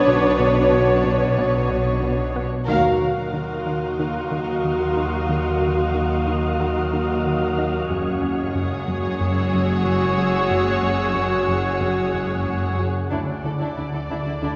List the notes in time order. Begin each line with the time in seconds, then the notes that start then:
Already playing: B1 B2 D3 F#3 D4 F#4 B4 C#5 F#5 C#6 D#6
0.07 B2
0.39 B2
0.73 B2
1.05 B2
1.38 B2
1.71 B2
2.03 B2
2.36 B3
2.66 D#2 D#3 F#3 F#4 A#4 F5 A#5
2.70 F#4 D#5 F5
3.02 D#3
3.33 D#3 C6
3.66 D#3
3.98 D#3 C#6
4.31 D#3
4.64 D#3
4.97 D#4
5.29 D#3
5.62 D#3
5.94 D#3
6.27 D#3
6.60 D#3
6.65 C6
6.93 D#3
7.25 D#3
7.58 D#4
7.89 F#1 F#2 G#3 F#4 G#4 C#5 F#5 C#6
8.23 F#2
8.55 F#2 D#6
8.88 F#2
9.20 F#2 E6
9.53 F#2
9.86 F#2
10.18 F#3
10.51 F#2
10.83 F#2
11.15 F#2
11.48 F#2
11.81 F#2
12.14 F#2
12.47 F#2
12.79 F#3
13.10 D2 D3 A3 D4 E4 A4 D5 E5
13.43 D2 D3 E4 A4
13.59 D3 D4 E4
13.77 D2 D3 E4
13.93 D3 E4 A4
14.08 D2 D3 D4 E4
14.25 D3 E4
14.42 D2 D3 A3 D4 E4